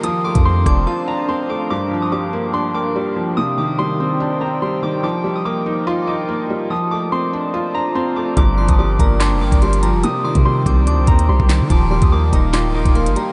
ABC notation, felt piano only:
X:1
M:4/4
L:1/8
Q:1/4=144
K:Gm
V:1 name="Felt piano"
F, A, C D F D C A, | G,, F, G, B, D B, G, F, | C, E, G, C D C G, E, | F, G, B, E F E B, G, |
F, A, C D F D C A, | G,, F, G, B, D B, G, F, | C, E, G, C D C G, E, | F, G, B, E F E B, G, |]